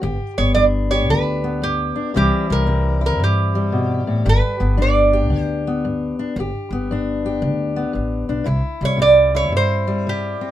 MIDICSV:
0, 0, Header, 1, 4, 480
1, 0, Start_track
1, 0, Key_signature, 1, "major"
1, 0, Tempo, 526778
1, 32, Time_signature, 4, 2, 24, 8
1, 9577, End_track
2, 0, Start_track
2, 0, Title_t, "Resonator guitar played with a steel bar"
2, 0, Program_c, 0, 25
2, 345, Note_on_c, 0, 73, 81
2, 493, Note_off_c, 0, 73, 0
2, 497, Note_on_c, 0, 74, 90
2, 583, Note_off_c, 0, 74, 0
2, 827, Note_on_c, 0, 73, 90
2, 1000, Note_off_c, 0, 73, 0
2, 1005, Note_on_c, 0, 71, 81
2, 1490, Note_on_c, 0, 67, 73
2, 1496, Note_off_c, 0, 71, 0
2, 1966, Note_off_c, 0, 67, 0
2, 1977, Note_on_c, 0, 67, 85
2, 2289, Note_off_c, 0, 67, 0
2, 2300, Note_on_c, 0, 70, 86
2, 2734, Note_off_c, 0, 70, 0
2, 2789, Note_on_c, 0, 70, 79
2, 2928, Note_off_c, 0, 70, 0
2, 2949, Note_on_c, 0, 67, 73
2, 3912, Note_on_c, 0, 71, 92
2, 3923, Note_off_c, 0, 67, 0
2, 4390, Note_off_c, 0, 71, 0
2, 4392, Note_on_c, 0, 74, 74
2, 4929, Note_off_c, 0, 74, 0
2, 4929, Note_on_c, 0, 72, 74
2, 5131, Note_off_c, 0, 72, 0
2, 8064, Note_on_c, 0, 73, 87
2, 8213, Note_off_c, 0, 73, 0
2, 8216, Note_on_c, 0, 74, 91
2, 8495, Note_off_c, 0, 74, 0
2, 8532, Note_on_c, 0, 73, 88
2, 8676, Note_off_c, 0, 73, 0
2, 8716, Note_on_c, 0, 72, 81
2, 9187, Note_off_c, 0, 72, 0
2, 9196, Note_on_c, 0, 67, 74
2, 9577, Note_off_c, 0, 67, 0
2, 9577, End_track
3, 0, Start_track
3, 0, Title_t, "Steel-string acoustic guitar"
3, 0, Program_c, 1, 25
3, 14, Note_on_c, 1, 43, 65
3, 27, Note_on_c, 1, 67, 63
3, 346, Note_on_c, 1, 59, 49
3, 471, Note_off_c, 1, 43, 0
3, 510, Note_on_c, 1, 43, 66
3, 512, Note_on_c, 1, 62, 53
3, 826, Note_off_c, 1, 67, 0
3, 830, Note_on_c, 1, 67, 60
3, 960, Note_off_c, 1, 43, 0
3, 1009, Note_on_c, 1, 43, 64
3, 1301, Note_off_c, 1, 59, 0
3, 1312, Note_on_c, 1, 59, 54
3, 1450, Note_off_c, 1, 43, 0
3, 1473, Note_on_c, 1, 43, 58
3, 1771, Note_off_c, 1, 62, 0
3, 1782, Note_on_c, 1, 62, 47
3, 1923, Note_off_c, 1, 43, 0
3, 1934, Note_off_c, 1, 62, 0
3, 1940, Note_off_c, 1, 59, 0
3, 1950, Note_on_c, 1, 48, 64
3, 1955, Note_on_c, 1, 52, 54
3, 1965, Note_on_c, 1, 55, 58
3, 1968, Note_on_c, 1, 60, 54
3, 1972, Note_off_c, 1, 67, 0
3, 1975, Note_on_c, 1, 64, 64
3, 2274, Note_off_c, 1, 55, 0
3, 2278, Note_on_c, 1, 55, 49
3, 2402, Note_off_c, 1, 48, 0
3, 2423, Note_off_c, 1, 60, 0
3, 2427, Note_on_c, 1, 48, 72
3, 2434, Note_on_c, 1, 60, 53
3, 2733, Note_off_c, 1, 64, 0
3, 2744, Note_on_c, 1, 64, 59
3, 2880, Note_off_c, 1, 48, 0
3, 2914, Note_on_c, 1, 48, 65
3, 3233, Note_off_c, 1, 55, 0
3, 3236, Note_on_c, 1, 55, 52
3, 3364, Note_off_c, 1, 48, 0
3, 3392, Note_on_c, 1, 47, 59
3, 3707, Note_off_c, 1, 47, 0
3, 3711, Note_on_c, 1, 45, 60
3, 3857, Note_off_c, 1, 52, 0
3, 3858, Note_off_c, 1, 60, 0
3, 3876, Note_on_c, 1, 43, 71
3, 3877, Note_off_c, 1, 64, 0
3, 3880, Note_off_c, 1, 45, 0
3, 3883, Note_on_c, 1, 67, 60
3, 4187, Note_off_c, 1, 55, 0
3, 4191, Note_on_c, 1, 59, 52
3, 4325, Note_off_c, 1, 43, 0
3, 4350, Note_on_c, 1, 43, 72
3, 4354, Note_on_c, 1, 62, 57
3, 4673, Note_off_c, 1, 67, 0
3, 4677, Note_on_c, 1, 67, 65
3, 4801, Note_off_c, 1, 43, 0
3, 4829, Note_on_c, 1, 43, 64
3, 5151, Note_off_c, 1, 59, 0
3, 5169, Note_on_c, 1, 59, 55
3, 5281, Note_off_c, 1, 43, 0
3, 5327, Note_on_c, 1, 43, 63
3, 5629, Note_off_c, 1, 62, 0
3, 5642, Note_on_c, 1, 62, 53
3, 5770, Note_off_c, 1, 43, 0
3, 5784, Note_off_c, 1, 62, 0
3, 5788, Note_off_c, 1, 59, 0
3, 5822, Note_on_c, 1, 43, 71
3, 5826, Note_off_c, 1, 67, 0
3, 5830, Note_on_c, 1, 67, 61
3, 6128, Note_on_c, 1, 59, 54
3, 6256, Note_off_c, 1, 43, 0
3, 6295, Note_on_c, 1, 43, 68
3, 6307, Note_on_c, 1, 62, 54
3, 6608, Note_off_c, 1, 67, 0
3, 6612, Note_on_c, 1, 67, 62
3, 6733, Note_off_c, 1, 43, 0
3, 6760, Note_on_c, 1, 43, 64
3, 7063, Note_off_c, 1, 59, 0
3, 7074, Note_on_c, 1, 59, 53
3, 7204, Note_off_c, 1, 43, 0
3, 7228, Note_on_c, 1, 43, 63
3, 7542, Note_off_c, 1, 62, 0
3, 7553, Note_on_c, 1, 62, 49
3, 7678, Note_off_c, 1, 43, 0
3, 7693, Note_on_c, 1, 48, 67
3, 7698, Note_off_c, 1, 59, 0
3, 7698, Note_off_c, 1, 62, 0
3, 7700, Note_off_c, 1, 67, 0
3, 7704, Note_on_c, 1, 64, 62
3, 8040, Note_on_c, 1, 55, 51
3, 8150, Note_off_c, 1, 48, 0
3, 8175, Note_on_c, 1, 48, 68
3, 8194, Note_on_c, 1, 60, 57
3, 8514, Note_off_c, 1, 64, 0
3, 8517, Note_on_c, 1, 64, 57
3, 8630, Note_off_c, 1, 48, 0
3, 8677, Note_on_c, 1, 48, 70
3, 8994, Note_off_c, 1, 55, 0
3, 8998, Note_on_c, 1, 55, 55
3, 9120, Note_off_c, 1, 48, 0
3, 9174, Note_on_c, 1, 48, 64
3, 9484, Note_off_c, 1, 60, 0
3, 9488, Note_on_c, 1, 60, 53
3, 9577, Note_off_c, 1, 48, 0
3, 9577, Note_off_c, 1, 55, 0
3, 9577, Note_off_c, 1, 60, 0
3, 9577, Note_off_c, 1, 64, 0
3, 9577, End_track
4, 0, Start_track
4, 0, Title_t, "Upright bass"
4, 0, Program_c, 2, 32
4, 25, Note_on_c, 2, 31, 91
4, 148, Note_off_c, 2, 31, 0
4, 345, Note_on_c, 2, 31, 86
4, 1004, Note_off_c, 2, 31, 0
4, 1004, Note_on_c, 2, 38, 86
4, 1740, Note_off_c, 2, 38, 0
4, 1968, Note_on_c, 2, 36, 89
4, 2084, Note_off_c, 2, 36, 0
4, 2280, Note_on_c, 2, 36, 88
4, 2922, Note_off_c, 2, 36, 0
4, 2922, Note_on_c, 2, 43, 81
4, 3659, Note_off_c, 2, 43, 0
4, 3879, Note_on_c, 2, 31, 101
4, 3999, Note_off_c, 2, 31, 0
4, 4196, Note_on_c, 2, 31, 82
4, 4834, Note_off_c, 2, 31, 0
4, 4834, Note_on_c, 2, 38, 81
4, 5573, Note_off_c, 2, 38, 0
4, 5796, Note_on_c, 2, 31, 92
4, 5917, Note_off_c, 2, 31, 0
4, 6110, Note_on_c, 2, 31, 80
4, 6760, Note_on_c, 2, 38, 83
4, 6774, Note_off_c, 2, 31, 0
4, 7127, Note_off_c, 2, 38, 0
4, 7245, Note_on_c, 2, 33, 72
4, 7522, Note_off_c, 2, 33, 0
4, 7557, Note_on_c, 2, 35, 69
4, 7704, Note_off_c, 2, 35, 0
4, 7712, Note_on_c, 2, 36, 94
4, 7833, Note_off_c, 2, 36, 0
4, 8027, Note_on_c, 2, 36, 85
4, 8685, Note_off_c, 2, 36, 0
4, 8685, Note_on_c, 2, 43, 86
4, 9416, Note_off_c, 2, 43, 0
4, 9577, End_track
0, 0, End_of_file